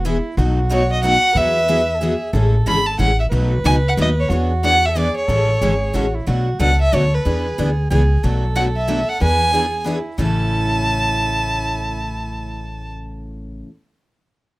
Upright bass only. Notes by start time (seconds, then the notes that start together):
Already playing: E1
0.37 B1
1.35 E2
2.33 A1
2.66 G#1
2.99 A1
3.31 B1
3.64 C#2
3.97 D#2
4.30 E2
5.28 A1
5.61 G#1
5.94 A1
6.27 B1
6.60 C#2
6.93 D2
7.26 E2
7.59 D2
7.91 C#2
8.24 B1
9.21 E2
10.18 A1